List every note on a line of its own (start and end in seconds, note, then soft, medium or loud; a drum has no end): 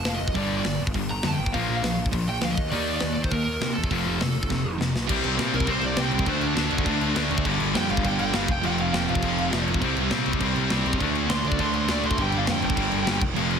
0.05 0.18 F1 medium
0.05 0.14 F5 medium
0.05 snare loud
0.05 open hi-hat medium
0.14 0.36 D#5 medium
0.21 0.33 F1 medium
0.28 kick medium
0.35 0.60 G1 medium
0.35 0.64 G2 medium
0.35 0.64 D3 medium
0.35 0.65 G3 medium
0.35 0.57 D5 loud
0.35 kick medium
0.35 open hi-hat medium
0.58 0.79 D5 medium
0.64 0.78 G1 medium
0.64 0.79 G2 medium
0.64 0.79 D3 medium
0.64 snare medium
0.64 open hi-hat medium
0.81 0.93 G1 medium
0.87 kick medium
0.94 1.19 G1 medium
0.94 1.09 G2 medium
0.94 1.09 D3 medium
0.94 kick medium
0.94 open hi-hat medium
1.11 1.27 A#5 loud
1.23 1.37 F2 medium
1.23 1.38 G2 medium
1.23 1.38 D3 medium
1.23 snare loud
1.23 open hi-hat medium
1.27 1.34 A5 medium
1.32 1.53 G5 medium
1.39 1.52 G1 medium
1.46 kick medium
1.53 1.67 A#1 medium
1.53 1.82 A#2 medium
1.53 1.82 F3 medium
1.53 1.83 A#3 medium
1.53 1.76 F5 medium
1.53 kick medium
1.53 open hi-hat soft
1.69 1.81 A#1 medium
1.77 1.98 F5 medium
1.82 1.95 A#1 medium
1.82 1.97 A#2 medium
1.82 1.97 F3 medium
1.82 snare loud
1.82 open hi-hat medium
1.98 2.11 A#1 medium
2.06 kick medium
2.12 2.26 A#1 medium
2.12 2.27 A#2 medium
2.12 2.27 F3 medium
2.12 kick loud
2.12 open hi-hat medium
2.27 2.40 A#1 medium
2.27 2.43 G5 medium
2.41 2.55 D2 medium
2.41 2.57 A#2 medium
2.41 2.57 F3 medium
2.41 2.52 F5 medium
2.41 snare loud
2.41 open hi-hat medium
2.51 2.70 D#5 loud
2.57 2.70 D#2 medium
2.57 kick loud
2.71 2.97 D#2 medium
2.71 3.01 D#3 medium
2.71 3.01 A#3 medium
2.71 3.02 D#4 medium
2.71 2.93 D5 loud
2.71 open hi-hat medium
2.94 3.13 D5 loud
3.00 3.15 D#2 medium
3.00 3.16 D#3 medium
3.00 3.16 A#3 medium
3.00 snare loud
3.00 open hi-hat medium
3.14 3.30 D#2 medium
3.14 3.23 D5 medium
3.24 3.31 C5 medium
3.24 kick medium
3.31 3.56 D#2 medium
3.31 3.46 D#3 medium
3.31 3.46 A#3 medium
3.31 3.42 A#4 medium
3.31 kick medium
3.31 open hi-hat medium
3.44 3.74 A#4 medium
3.61 3.74 C3 medium
3.61 3.75 D#3 medium
3.61 3.75 A#3 medium
3.61 snare loud
3.61 open hi-hat soft
3.74 3.90 E2 medium
3.74 4.75 A4 medium
3.84 kick medium
3.90 4.03 F1 medium
3.90 4.20 F2 medium
3.90 4.21 C3 loud
3.90 4.21 F3 medium
3.90 kick loud
3.90 open hi-hat medium
4.06 4.19 F1 medium
4.21 4.33 F1 medium
4.21 4.35 F2 medium
4.21 4.35 C3 medium
4.21 snare loud
4.21 open hi-hat soft
4.36 4.48 F1 medium
4.43 kick medium
4.50 4.63 F1 medium
4.50 4.64 F2 medium
4.50 4.64 C3 medium
4.50 kick medium
4.50 snare medium
4.66 4.78 F1 medium
4.80 4.93 F1 medium
4.80 4.94 F2 medium
4.80 4.94 C3 medium
4.80 snare medium
4.95 5.07 B1 medium
4.95 snare medium
5.09 5.24 C2 loud
5.09 5.39 C3 medium
5.09 5.38 G3 loud
5.09 5.37 C4 loud
5.09 kick loud
5.09 crash loud
5.09 crash medium
5.24 5.38 C2 loud
5.24 crash medium
5.38 5.53 A#2 medium
5.38 5.66 C3 medium
5.38 5.67 G3 medium
5.38 5.67 C4 loud
5.38 snare loud
5.38 crash medium
5.53 5.67 C2 medium
5.53 5.69 A#4 medium
5.53 crash medium
5.60 kick medium
5.67 5.82 C2 loud
5.67 5.97 C3 loud
5.67 5.96 G3 loud
5.67 5.96 C4 loud
5.67 5.84 C5 medium
5.67 kick loud
5.67 crash medium
5.81 5.97 C2 loud
5.81 5.98 D5 medium
5.81 crash medium
5.96 6.12 C2 loud
5.96 6.26 C3 medium
5.96 6.26 G3 loud
5.96 6.26 C4 loud
5.96 6.28 G5 medium
5.96 snare loud
5.96 crash medium
6.11 6.26 C2 medium
6.11 crash medium
6.19 kick loud
6.26 6.56 D2 loud
6.26 6.57 D3 loud
6.26 6.56 A3 loud
6.26 6.55 D4 loud
6.26 6.43 C5 loud
6.26 kick loud
6.26 crash medium
6.41 6.55 D4 medium
6.41 crash medium
6.56 6.71 D2 medium
6.56 6.85 D3 medium
6.56 6.86 A3 medium
6.56 7.14 D4 loud
6.56 6.87 D4 loud
6.56 snare loud
6.56 crash medium
6.71 6.86 D2 medium
6.71 crash medium
6.78 kick medium
6.86 7.15 D2 loud
6.86 7.16 D3 loud
6.86 7.15 A3 loud
6.86 7.15 D4 loud
6.86 kick loud
6.86 crash medium
7.01 crash medium
7.16 7.30 D2 medium
7.16 7.45 D3 medium
7.16 7.45 A3 medium
7.16 7.45 D4 loud
7.16 snare loud
7.16 crash medium
7.31 7.45 D2 medium
7.31 crash medium
7.38 kick medium
7.45 7.59 G1 loud
7.45 7.75 G2 medium
7.45 7.74 D3 loud
7.45 7.73 G3 loud
7.45 kick loud
7.45 crash loud
7.60 7.74 G1 loud
7.60 crash medium
7.74 7.89 F2 loud
7.74 8.04 G2 medium
7.74 8.05 D3 loud
7.74 8.06 G3 loud
7.74 7.90 G5 loud
7.74 snare loud
7.74 crash medium
7.90 8.04 G1 medium
7.90 8.05 F5 medium
7.90 crash medium
7.97 kick loud
8.05 8.19 G1 loud
8.05 8.34 G2 loud
8.05 8.34 D3 loud
8.05 8.33 G3 loud
8.05 8.19 G5 medium
8.05 kick loud
8.05 crash loud
8.19 8.34 G1 loud
8.19 8.34 G5 loud
8.19 crash medium
8.33 8.48 G1 medium
8.33 8.49 G2 medium
8.33 8.48 D3 loud
8.33 8.48 G3 loud
8.33 8.51 F5 medium
8.33 snare loud
8.33 crash medium
8.48 8.63 F1 medium
8.48 8.64 G5 loud
8.48 kick loud
8.48 crash medium
8.63 8.92 F1 loud
8.63 8.94 F2 medium
8.63 8.93 C3 loud
8.63 8.92 F3 loud
8.63 8.79 G5 loud
8.63 crash medium
8.78 8.93 F5 medium
8.78 crash medium
8.93 9.07 F1 loud
8.93 9.22 F2 medium
8.93 9.23 C3 loud
8.93 9.23 F3 loud
8.93 9.08 G5 medium
8.93 snare loud
8.93 crash medium
9.08 9.22 F1 medium
9.08 9.66 F5 loud
9.08 crash medium
9.15 kick loud
9.23 9.51 F1 loud
9.23 9.53 F2 medium
9.23 9.52 C3 loud
9.23 9.51 F3 loud
9.23 kick loud
9.23 crash medium
9.38 crash medium
9.52 9.67 F1 medium
9.52 9.82 F2 medium
9.52 9.81 C3 medium
9.52 9.81 F3 loud
9.52 snare loud
9.52 crash medium
9.68 9.81 F1 loud
9.68 crash medium
9.74 kick medium
9.81 9.96 C2 loud
9.81 10.12 C3 medium
9.81 10.11 G3 loud
9.81 10.10 C4 loud
9.81 kick loud
9.81 crash loud
9.97 10.11 C2 loud
9.97 crash medium
10.11 10.25 A#2 loud
10.11 10.40 C3 medium
10.11 10.40 G3 medium
10.11 10.41 C4 loud
10.11 snare loud
10.11 crash medium
10.26 10.40 C2 medium
10.26 crash medium
10.33 kick medium
10.41 10.55 C2 medium
10.41 10.71 C3 loud
10.41 10.70 G3 loud
10.41 10.70 C4 loud
10.41 kick loud
10.41 crash loud
10.56 10.70 C2 medium
10.56 crash medium
10.70 10.85 C2 medium
10.70 11.00 C3 medium
10.70 10.99 G3 loud
10.70 10.99 C4 loud
10.70 snare loud
10.70 crash medium
10.85 10.99 C2 medium
10.85 crash medium
10.93 kick medium
11.00 11.29 D2 medium
11.00 11.31 D3 loud
11.00 11.31 A3 loud
11.00 11.30 D4 loud
11.00 kick loud
11.00 crash medium
11.15 crash medium
11.28 11.44 D2 loud
11.28 11.56 D3 loud
11.28 11.57 A3 loud
11.28 11.59 D4 loud
11.28 11.44 C6 loud
11.28 snare loud
11.28 crash medium
11.32 11.57 D3 medium
11.32 11.58 A3 medium
11.44 11.59 D2 medium
11.44 11.60 D5 loud
11.44 crash medium
11.52 kick medium
11.58 11.88 D2 loud
11.58 11.90 D3 loud
11.58 11.89 A3 loud
11.58 11.88 D4 loud
11.58 11.74 C6 medium
11.58 kick loud
11.58 crash medium
11.74 11.89 C6 loud
11.74 crash medium
11.88 12.03 D2 medium
11.88 12.18 D3 medium
11.88 12.18 A3 loud
11.88 12.17 D4 loud
11.88 12.03 D5 loud
11.88 snare loud
11.88 crash medium
12.03 12.17 D2 medium
12.03 12.19 C6 medium
12.03 crash medium
12.11 kick loud
12.18 12.32 G1 loud
12.18 12.49 G2 loud
12.18 12.48 D3 loud
12.18 12.47 G3 loud
12.18 kick medium
12.18 crash medium
12.22 12.37 G5 loud
12.32 12.47 G1 loud
12.32 crash medium
12.37 12.49 F5 medium
12.47 12.62 F2 loud
12.47 12.76 G2 medium
12.47 12.77 D3 loud
12.47 12.77 G3 medium
12.47 snare loud
12.47 crash loud
12.51 12.64 G5 loud
12.62 12.77 G1 loud
12.62 13.21 G5 loud
12.62 crash medium
12.70 kick medium
12.77 12.92 G1 loud
12.77 13.07 G2 loud
12.77 13.06 D3 loud
12.77 13.06 G3 loud
12.77 kick loud
12.77 crash loud
12.92 13.06 G1 loud
12.92 crash medium
13.07 13.20 G1 loud
13.07 13.21 G2 loud
13.07 13.21 D3 medium
13.07 13.21 G3 loud
13.07 snare loud
13.07 crash medium
13.21 13.35 F1 medium
13.21 kick loud
13.21 crash medium
13.36 13.60 F1 loud
13.36 13.60 F2 loud
13.36 13.60 C3 loud
13.36 13.60 F3 loud
13.36 crash medium
13.51 crash medium